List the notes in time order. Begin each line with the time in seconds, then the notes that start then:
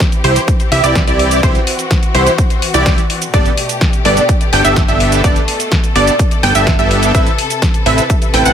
Already playing: E3 C4 G4
0.00 kick, snare, closed hi-hat, shaker
0.12 closed hi-hat, shaker
0.24 C2 E4 G4 C5, open hi-hat
0.36 closed hi-hat, shaker
0.48 kick, closed hi-hat, shaker
0.60 closed hi-hat, shaker
0.72 C2 E4 G4 E5, open hi-hat
0.84 C2 E4 G4 D5, closed hi-hat, shaker
0.95 kick, snare, closed hi-hat, shaker
1.07 C2 E4 G4 D5, closed hi-hat, shaker
1.19 open hi-hat
1.31 closed hi-hat, shaker
1.43 C2 E4 F#4 G4 C5, kick, closed hi-hat, shaker
1.55 closed hi-hat, shaker
1.67 open hi-hat
1.79 closed hi-hat, shaker
1.91 kick, snare, closed hi-hat, shaker
2.03 closed hi-hat, shaker
2.15 C2 E4 G4 C5, open hi-hat
2.27 closed hi-hat, shaker
2.38 kick, closed hi-hat, shaker
2.50 closed hi-hat, shaker
2.62 open hi-hat
2.74 C2 E4 G4 D5, closed hi-hat, shaker
2.86 kick, snare, closed hi-hat, shaker
2.98 closed hi-hat, shaker
3.10 open hi-hat
3.22 closed hi-hat, shaker
3.34 G1 B2 A3 B3 D4 G4 A4 D5, kick, closed hi-hat, shaker
3.46 closed hi-hat, shaker
3.57 open hi-hat
3.69 closed hi-hat, shaker
3.81 kick, snare, closed hi-hat, shaker
3.93 closed hi-hat, shaker
4.05 G1 B3 D4 G4 A4 D5, open hi-hat
4.17 closed hi-hat, shaker
4.29 kick, closed hi-hat, shaker
4.41 closed hi-hat, shaker
4.53 G1 B3 D4 G4 A4 G5, open hi-hat
4.65 G1 B3 D4 G4 A4 E5, closed hi-hat, shaker
4.76 kick, snare, closed hi-hat, shaker
4.88 G1 B3 D4 G4 A4 E5, closed hi-hat, shaker
5.00 open hi-hat
5.12 closed hi-hat, shaker
5.24 B3 D4 G4 A4 D5, kick, closed hi-hat, shaker
5.36 closed hi-hat, shaker
5.48 open hi-hat
5.60 closed hi-hat, shaker
5.72 kick, snare, closed hi-hat, shaker
5.84 closed hi-hat, shaker
5.96 G1 B3 D4 G4 A4 D5, open hi-hat
6.07 closed hi-hat, shaker
6.19 kick, closed hi-hat, shaker
6.31 closed hi-hat, shaker
6.43 G1 B3 D4 G4 A4 G5, open hi-hat
6.55 G1 B3 D4 G4 A4 E5, closed hi-hat, shaker
6.67 kick, snare, closed hi-hat, shaker
6.79 G1 B3 D4 G4 A4 E5, closed hi-hat, shaker
6.91 open hi-hat
7.03 closed hi-hat, shaker
7.15 C3 C4 E4 A4 B4 E5, kick, closed hi-hat, shaker
7.27 closed hi-hat, shaker
7.38 open hi-hat
7.50 closed hi-hat, shaker
7.62 kick, snare, closed hi-hat, shaker
7.74 closed hi-hat, shaker
7.86 A1 C4 E4 A4 B4 E5, open hi-hat
7.98 closed hi-hat, shaker
8.10 kick, closed hi-hat, shaker
8.22 closed hi-hat, shaker
8.34 A1 C4 E4 A4 B4 G5, open hi-hat
8.46 A1 C4 E4 A4 B4 F#5, closed hi-hat, shaker